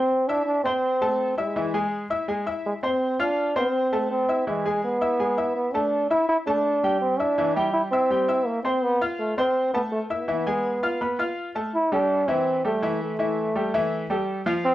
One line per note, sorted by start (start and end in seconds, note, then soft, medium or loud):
0.00 0.30 C4 loud
0.28 0.46 D4 loud
0.28 0.59 E4 medium
0.28 0.59 E5 medium
0.28 0.59 E6 medium
0.46 0.63 D4 loud
0.64 1.34 C4 loud
0.64 0.95 C4 medium
0.64 0.95 C5 medium
0.64 0.96 C6 medium
1.01 1.31 A3 medium
1.01 1.32 A4 medium
1.01 1.32 A5 medium
1.37 1.89 G#3 medium
1.37 1.53 E4 medium
1.37 1.53 E5 medium
1.37 1.53 E6 medium
1.56 1.71 E3 medium
1.56 1.71 E4 medium
1.56 1.71 E5 medium
1.74 2.04 G#3 medium
1.74 2.04 G#4 medium
1.74 2.04 G#5 medium
2.10 2.25 E4 medium
2.10 2.25 E5 medium
2.10 2.26 E6 medium
2.28 2.43 G#3 medium
2.28 2.43 G#4 medium
2.28 2.44 G#5 medium
2.46 2.76 E4 medium
2.46 2.77 E5 medium
2.46 2.77 E6 medium
2.66 2.74 G#3 medium
2.83 3.13 C4 medium
2.83 3.22 C4 medium
2.83 3.13 C5 medium
2.83 3.13 C6 medium
3.19 3.56 D4 loud
3.19 3.49 F4 medium
3.19 3.50 F5 medium
3.19 3.50 F6 medium
3.56 3.86 C4 medium
3.56 4.07 C4 medium
3.56 3.86 C5 medium
3.56 3.86 C6 medium
3.92 4.22 A3 medium
3.92 4.23 A4 medium
3.92 4.23 A5 medium
4.11 4.45 C4 medium
4.29 4.44 E4 medium
4.29 4.44 E5 medium
4.29 4.44 E6 medium
4.47 4.62 E3 medium
4.47 4.81 G#3 loud
4.47 4.62 E4 medium
4.47 4.62 E5 medium
4.65 4.95 G#3 medium
4.65 4.95 G#4 medium
4.65 4.95 G#5 medium
4.84 5.53 B3 loud
5.01 5.16 E4 medium
5.01 5.17 E5 medium
5.01 5.17 E6 medium
5.19 5.35 G#3 medium
5.19 5.35 G#4 medium
5.19 5.35 G#5 medium
5.38 5.68 E4 medium
5.38 5.68 E5 medium
5.38 5.68 E6 medium
5.56 5.76 B3 loud
5.74 6.04 A3 medium
5.74 6.10 D4 loud
5.74 6.04 A4 medium
5.74 6.05 A5 medium
6.10 6.40 E4 medium
6.10 6.28 E4 loud
6.10 6.41 E5 medium
6.10 6.41 E6 medium
6.29 6.37 E4 loud
6.47 6.77 A3 medium
6.47 6.98 D4 loud
6.47 6.77 A4 medium
6.47 6.77 A5 medium
6.83 7.13 G3 medium
6.83 7.13 G4 medium
6.83 7.14 G5 medium
7.01 7.21 C4 loud
7.19 7.56 D4 loud
7.19 7.34 E4 medium
7.19 7.35 E5 medium
7.19 7.35 E6 medium
7.38 7.53 E3 medium
7.38 7.53 E4 medium
7.38 7.53 E5 medium
7.55 7.86 G3 medium
7.55 7.73 E4 loud
7.55 7.86 G4 medium
7.55 7.86 G5 medium
7.73 7.82 E4 loud
7.91 8.48 C4 loud
7.91 8.07 E4 medium
7.91 8.07 E5 medium
7.91 8.08 E6 medium
8.10 8.25 G3 medium
8.10 8.25 G4 medium
8.10 8.26 G5 medium
8.28 8.58 E4 medium
8.28 8.58 E5 medium
8.28 8.59 E6 medium
8.46 8.63 A#3 loud
8.64 8.84 C4 medium
8.64 8.95 C4 medium
8.64 8.95 C5 medium
8.64 8.95 C6 medium
8.83 9.01 B3 loud
9.01 9.31 F4 medium
9.01 9.31 F5 medium
9.01 9.31 F6 medium
9.19 9.36 A3 medium
9.37 9.71 C4 medium
9.37 9.67 C4 medium
9.37 9.68 C5 medium
9.37 9.68 C6 medium
9.73 10.04 A3 medium
9.73 9.82 B3 medium
9.73 10.04 A4 medium
9.73 10.04 A5 medium
9.92 10.00 A3 medium
10.09 11.33 B3 medium
10.09 10.25 E4 medium
10.09 10.25 E5 medium
10.09 10.25 E6 medium
10.28 10.43 E3 medium
10.28 10.43 E4 medium
10.28 10.43 E5 medium
10.46 10.76 G#3 medium
10.46 10.76 G#4 medium
10.46 10.77 G#5 medium
10.83 10.98 F4 medium
10.83 10.98 F5 medium
10.83 10.98 F6 medium
11.01 11.16 B3 medium
11.01 11.16 B4 medium
11.01 11.16 B5 medium
11.19 11.49 F4 medium
11.19 11.49 F5 medium
11.19 11.49 F6 medium
11.55 11.70 A3 medium
11.55 11.70 A4 medium
11.55 11.71 A5 medium
11.74 11.94 E4 loud
11.92 12.22 G3 medium
11.92 12.31 D4 loud
11.92 12.22 G4 medium
11.92 12.22 A4 medium
12.28 12.58 E3 medium
12.28 12.65 C4 medium
12.28 12.58 E4 medium
12.28 12.58 E5 medium
12.64 12.79 G3 medium
12.64 12.99 A3 medium
12.64 12.79 G4 medium
12.64 12.80 A4 medium
12.82 13.12 E3 medium
12.82 13.12 E4 medium
12.82 13.13 E5 medium
13.03 14.07 A3 medium
13.19 13.49 E3 medium
13.19 13.49 E4 medium
13.19 13.49 E5 medium
13.55 13.70 G3 medium
13.55 13.70 G4 medium
13.55 13.71 A4 medium
13.74 14.04 E3 medium
13.74 14.04 E4 medium
13.74 14.04 E5 medium
14.10 14.40 G3 medium
14.10 14.40 G4 medium
14.10 14.40 A4 medium
14.46 14.75 F3 medium
14.46 14.75 F4 medium
14.46 14.75 F5 medium
14.65 14.73 C4 loud